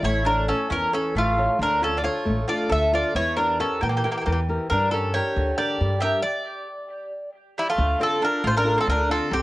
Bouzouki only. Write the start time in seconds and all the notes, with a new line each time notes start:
0.05 C#5
0.26 A#4
0.49 A4
0.72 A#4
0.94 A4
1.18 F4
1.63 A#4
1.84 A4
1.98 D5
2.04 C#5
2.49 D5
2.72 E5
2.95 D5
3.16 C#5
3.37 A#4
3.60 A4
3.83 G4
3.89 G4
3.97 G4
4.04 G4
4.12 G4
4.17 G4
4.26 G4
4.32 G4
4.70 A#4
4.91 A4
5.14 C#5
5.58 D5
6.02 E5
6.23 D5
7.59 E4
7.70 F4
8.03 A4
8.24 A#4
8.47 C5
8.57 A#4
8.80 A4
8.89 A#4
9.11 A4
9.33 G4